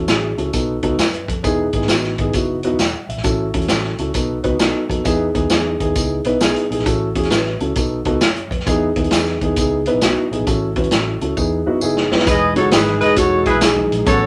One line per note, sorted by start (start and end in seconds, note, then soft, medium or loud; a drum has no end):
0.08 0.34 A1 medium
0.08 0.30 C#4 medium
0.08 0.30 E4 medium
0.08 0.30 F#4 medium
0.08 0.30 G#4 medium
0.08 snare loud
0.08 closed hi-hat medium
0.08 tambourine medium
0.38 0.51 C#2 medium
0.38 0.49 C#4 medium
0.38 0.49 E4 medium
0.38 0.49 F#4 medium
0.38 0.49 A4 medium
0.38 closed hi-hat medium
0.53 0.79 B1 medium
0.53 0.75 B3 medium
0.53 0.75 D#4 medium
0.53 0.75 F#4 medium
0.53 0.75 A4 medium
0.53 kick medium
0.53 closed hi-hat medium
0.53 tambourine medium
0.83 0.96 C#2 medium
0.83 0.94 B3 medium
0.83 0.95 D#4 medium
0.83 0.95 F#4 medium
0.83 0.95 A4 loud
0.83 kick medium
0.83 closed hi-hat medium
0.98 1.24 F#2 medium
0.98 snare loud
0.98 closed hi-hat medium
0.98 tambourine medium
1.14 closed hi-hat soft
1.28 1.42 F2 medium
1.28 1.72 A4 medium
1.28 kick medium
1.28 closed hi-hat medium
1.43 1.69 E1 medium
1.43 1.65 B3 medium
1.43 1.65 D#4 medium
1.43 1.65 E4 medium
1.43 1.65 G#4 loud
1.43 kick medium
1.43 closed hi-hat medium
1.43 tambourine medium
1.73 1.87 G#1 medium
1.73 1.85 B3 medium
1.73 1.85 D#4 medium
1.73 1.85 E4 medium
1.73 1.85 G#4 medium
1.73 kick medium
1.73 closed hi-hat medium
1.81 snare soft
1.88 2.14 A1 medium
1.88 2.11 B3 medium
1.88 2.11 D#4 medium
1.88 2.11 E4 medium
1.88 2.11 F#4 medium
1.88 snare loud
1.88 closed hi-hat medium
1.88 tambourine medium
2.04 snare soft
2.18 2.32 G#1 medium
2.18 2.30 B3 medium
2.18 2.30 D#4 medium
2.18 2.30 E4 medium
2.18 2.31 G#4 medium
2.18 kick medium
2.18 closed hi-hat medium
2.33 2.66 F#1 medium
2.33 2.56 B3 medium
2.33 2.56 D#4 medium
2.33 2.56 E4 medium
2.33 2.56 F#4 medium
2.33 kick medium
2.33 closed hi-hat medium
2.33 tambourine medium
2.63 2.75 B3 medium
2.63 2.75 D#4 medium
2.63 2.75 E4 medium
2.63 2.76 F#4 loud
2.63 closed hi-hat medium
2.71 2.78 E1 medium
2.79 2.92 E1 medium
2.79 3.08 F#5 medium
2.79 snare loud
2.79 closed hi-hat medium
2.79 tambourine medium
3.09 3.16 B1 medium
3.09 3.52 E5 medium
3.09 closed hi-hat medium
3.16 3.23 A#1 medium
3.16 snare soft
3.23 3.50 A1 medium
3.23 3.45 C#4 medium
3.23 3.46 E4 medium
3.23 3.46 F#4 medium
3.23 3.46 A4 loud
3.23 kick loud
3.23 closed hi-hat medium
3.23 tambourine medium
3.54 3.67 E2 medium
3.54 3.65 C#4 medium
3.54 3.65 E4 medium
3.54 3.65 F#4 medium
3.54 3.65 A4 medium
3.54 kick medium
3.54 closed hi-hat medium
3.62 closed hi-hat soft
3.68 3.95 A1 medium
3.68 3.91 C#4 medium
3.68 3.91 E4 medium
3.68 3.91 F#4 medium
3.68 3.91 A4 medium
3.68 snare loud
3.68 closed hi-hat medium
3.68 tambourine medium
3.84 snare soft
3.98 4.12 C#2 medium
3.98 4.10 C#4 medium
3.98 4.11 E4 medium
3.98 4.11 F#4 medium
3.98 4.11 A4 medium
3.98 closed hi-hat medium
4.14 4.40 B1 medium
4.14 4.36 B3 medium
4.14 4.36 D#4 medium
4.14 4.36 F#4 medium
4.14 4.36 A4 medium
4.14 kick medium
4.14 closed hi-hat medium
4.14 tambourine medium
4.43 4.57 C#2 medium
4.43 4.55 B3 medium
4.43 4.55 D#4 medium
4.43 4.55 F#4 medium
4.43 4.55 B4 loud
4.43 kick medium
4.43 closed hi-hat medium
4.59 4.72 B1 medium
4.59 4.81 B3 medium
4.59 4.81 D#4 medium
4.59 4.81 F#4 medium
4.59 4.81 A4 medium
4.59 snare loud
4.59 closed hi-hat medium
4.59 tambourine medium
4.89 5.03 F2 medium
4.89 5.01 B3 medium
4.89 5.01 D#4 medium
4.89 5.01 F#4 medium
4.89 5.01 A4 medium
4.89 kick medium
4.89 closed hi-hat medium
5.04 5.30 E2 medium
5.04 5.26 B3 medium
5.04 5.26 D#4 medium
5.04 5.26 E4 medium
5.04 5.27 G#4 loud
5.04 kick loud
5.04 closed hi-hat medium
5.04 tambourine medium
5.34 5.48 D#2 medium
5.34 5.46 B3 medium
5.34 5.46 D#4 medium
5.34 5.46 E4 medium
5.34 5.46 G#4 medium
5.34 kick medium
5.34 closed hi-hat medium
5.50 5.75 E2 medium
5.50 5.72 B3 medium
5.50 5.72 D#4 medium
5.50 5.72 E4 medium
5.50 5.72 G#4 medium
5.50 snare loud
5.50 closed hi-hat medium
5.50 tambourine medium
5.80 5.93 D#2 medium
5.80 5.91 B3 medium
5.80 5.91 D#4 medium
5.80 5.91 E4 medium
5.80 5.92 G#4 medium
5.80 kick medium
5.80 closed hi-hat medium
5.95 6.21 C#2 medium
5.95 6.17 B3 medium
5.95 6.17 D#4 medium
5.95 6.17 E4 medium
5.95 6.17 G#4 medium
5.95 kick medium
5.95 closed hi-hat medium
5.95 tambourine medium
6.24 6.38 B1 medium
6.24 6.36 B3 medium
6.24 6.36 D#4 medium
6.24 6.36 E4 medium
6.24 6.37 B4 loud
6.24 closed hi-hat medium
6.40 6.53 B1 medium
6.40 6.62 B3 medium
6.40 6.62 D#4 medium
6.40 6.62 E4 medium
6.40 6.62 G#4 medium
6.40 snare loud
6.40 closed hi-hat medium
6.40 tambourine medium
6.56 closed hi-hat medium
6.70 6.77 B1 medium
6.70 6.81 B3 medium
6.70 6.81 D#4 medium
6.70 6.82 E4 medium
6.70 6.82 G#4 medium
6.70 closed hi-hat medium
6.78 6.85 A#1 medium
6.78 snare soft
6.85 7.11 A1 medium
6.85 7.07 C#4 medium
6.85 7.07 E4 medium
6.85 7.07 F#4 medium
6.85 7.07 A4 loud
6.85 kick medium
6.85 closed hi-hat medium
6.85 tambourine medium
7.15 7.29 E2 medium
7.15 7.27 C#4 medium
7.15 7.27 E4 medium
7.15 7.27 F#4 medium
7.15 7.27 G#4 medium
7.15 kick medium
7.15 closed hi-hat medium
7.23 snare soft
7.23 closed hi-hat soft
7.30 7.56 A1 medium
7.30 7.52 C#4 medium
7.30 7.52 E4 medium
7.30 7.52 F#4 medium
7.30 7.53 B4 medium
7.30 snare loud
7.30 closed hi-hat medium
7.30 tambourine medium
7.46 snare soft
7.60 7.74 C#2 medium
7.60 7.72 C#4 medium
7.60 7.72 E4 medium
7.60 7.72 F#4 medium
7.60 7.72 A4 medium
7.60 closed hi-hat medium
7.76 8.01 B1 medium
7.76 7.97 B3 medium
7.76 7.97 D#4 medium
7.76 7.98 F#4 medium
7.76 7.98 A4 medium
7.76 kick medium
7.76 closed hi-hat medium
7.76 tambourine medium
8.05 8.19 C#2 medium
8.05 8.17 B3 medium
8.05 8.17 D#4 medium
8.05 8.17 F#4 medium
8.05 8.17 A4 loud
8.05 kick medium
8.05 closed hi-hat medium
8.21 8.46 F#2 medium
8.21 8.49 C#5 medium
8.21 snare loud
8.21 closed hi-hat medium
8.21 tambourine medium
8.36 closed hi-hat medium
8.51 8.64 F2 medium
8.51 8.94 B4 medium
8.51 kick medium
8.51 closed hi-hat medium
8.60 snare soft
8.67 8.92 E2 medium
8.67 8.88 B3 loud
8.67 8.88 D#4 medium
8.67 8.88 E4 medium
8.67 8.88 G#4 loud
8.67 kick loud
8.67 closed hi-hat medium
8.67 tambourine medium
8.96 9.09 D#2 medium
8.96 9.07 B3 medium
8.96 9.07 D#4 medium
8.96 9.07 E4 medium
8.96 9.07 G#4 medium
8.96 kick medium
8.96 closed hi-hat medium
9.04 closed hi-hat soft
9.11 9.37 E2 medium
9.11 9.33 B3 medium
9.11 9.33 D#4 medium
9.11 9.33 E4 medium
9.11 9.33 G#4 medium
9.11 snare loud
9.11 closed hi-hat medium
9.11 tambourine medium
9.26 snare soft
9.41 9.54 D#2 medium
9.41 9.53 B3 medium
9.41 9.53 D#4 medium
9.41 9.53 E4 medium
9.41 9.53 G#4 medium
9.41 kick medium
9.41 closed hi-hat medium
9.56 9.88 C#2 medium
9.56 9.78 B3 medium
9.56 9.78 D#4 medium
9.56 9.78 E4 medium
9.56 9.79 G#4 medium
9.56 kick medium
9.56 closed hi-hat medium
9.56 tambourine medium
9.86 9.98 B3 medium
9.86 9.98 D#4 medium
9.86 9.98 E4 medium
9.86 9.98 B4 loud
9.86 closed hi-hat medium
9.94 10.00 B1 medium
10.01 10.14 B1 medium
10.01 10.23 B3 medium
10.01 10.23 D#4 medium
10.01 10.23 E4 medium
10.01 10.24 F#4 loud
10.01 snare loud
10.01 closed hi-hat medium
10.01 tambourine medium
10.31 10.38 B1 medium
10.31 10.43 B3 medium
10.31 10.43 D#4 medium
10.31 10.43 E4 medium
10.31 10.43 G#4 medium
10.31 closed hi-hat medium
10.39 10.45 A#1 medium
10.46 10.76 A1 medium
10.46 10.68 C#4 medium
10.46 10.68 E4 medium
10.46 10.68 F#4 medium
10.46 10.68 A4 loud
10.46 kick loud
10.46 closed hi-hat medium
10.46 tambourine medium
10.76 10.89 E2 medium
10.76 10.88 C#4 medium
10.76 10.88 E4 medium
10.76 10.88 F#4 medium
10.76 10.88 B4 medium
10.76 kick medium
10.76 closed hi-hat medium
10.84 closed hi-hat soft
10.91 11.17 A1 medium
10.91 11.13 C#4 medium
10.91 11.13 E4 medium
10.91 11.13 F#4 medium
10.91 11.13 A4 medium
10.91 snare loud
10.91 closed hi-hat medium
10.91 tambourine medium
11.21 11.34 C#2 medium
11.21 11.33 C#4 medium
11.21 11.33 E4 medium
11.21 11.33 F#4 medium
11.21 11.33 A4 medium
11.21 closed hi-hat medium
11.37 11.62 E2 medium
11.37 11.58 B3 medium
11.37 11.58 D#4 medium
11.37 11.58 E4 medium
11.37 11.59 G#4 medium
11.37 kick medium
11.37 tambourine medium
11.66 11.80 F#2 medium
11.66 11.77 B3 medium
11.66 11.77 D#4 medium
11.66 11.78 E4 medium
11.66 11.78 F#4 loud
11.81 12.07 F#1 medium
11.81 12.03 B3 medium
11.81 12.03 D#4 medium
11.81 12.03 E4 medium
11.81 12.03 G#4 medium
11.81 tambourine medium
11.97 snare medium
12.11 12.25 F1 medium
12.11 12.22 B3 medium
12.11 12.23 D#4 medium
12.11 12.23 E4 medium
12.11 12.23 B4 medium
12.11 snare medium
12.19 snare medium
12.27 12.52 E1 medium
12.27 14.05 E3 medium
12.27 14.05 G#3 medium
12.27 14.05 D#4 medium
12.27 12.51 G#4 loud
12.27 12.51 B4 medium
12.27 12.51 D#5 loud
12.27 kick loud
12.27 closed hi-hat medium
12.27 tambourine medium
12.27 muted conga soft
12.56 12.70 F#1 medium
12.56 13.60 F#3 medium
12.56 13.60 G#3 soft
12.56 13.61 D#4 medium
12.56 12.72 F#4 medium
12.56 12.69 F#4 medium
12.56 12.69 A4 medium
12.56 12.69 C#5 medium
12.56 closed hi-hat medium
12.56 muted conga soft
12.71 13.02 G#1 medium
12.71 12.96 E4 medium
12.71 13.19 G#4 medium
12.71 12.96 G#4 medium
12.71 12.96 B4 medium
12.71 snare loud
12.71 closed hi-hat medium
12.71 tambourine medium
12.71 high conga medium
12.86 snare soft
13.01 13.15 E1 medium
13.01 13.14 G#4 loud
13.01 13.14 B4 loud
13.01 13.14 D#5 loud
13.01 closed hi-hat medium
13.16 13.48 E1 medium
13.16 13.47 F#4 medium
13.16 13.41 F#4 medium
13.16 13.41 A4 medium
13.16 13.41 C#5 medium
13.16 kick medium
13.16 closed hi-hat loud
13.16 tambourine medium
13.46 13.59 E4 loud
13.46 13.62 E4 medium
13.46 13.59 G#4 loud
13.46 13.59 B4 loud
13.46 kick medium
13.46 closed hi-hat medium
13.46 muted conga soft
13.55 13.86 B1 medium
13.61 13.88 F#3 soft
13.61 13.88 G#3 soft
13.61 13.89 D#4 medium
13.61 14.04 G#4 medium
13.61 snare loud
13.61 closed hi-hat medium
13.61 tambourine medium
13.61 high conga medium
13.76 high conga medium
13.91 14.04 A#1 medium
13.91 closed hi-hat medium
14.06 14.26 A1 medium
14.06 14.26 F#3 medium
14.06 14.26 A3 medium
14.06 14.26 B3 soft
14.06 14.26 C#4 medium
14.06 14.26 F#4 medium
14.06 14.26 A4 medium
14.06 14.26 C#5 loud
14.06 kick loud
14.06 closed hi-hat medium
14.06 tambourine medium
14.06 muted conga soft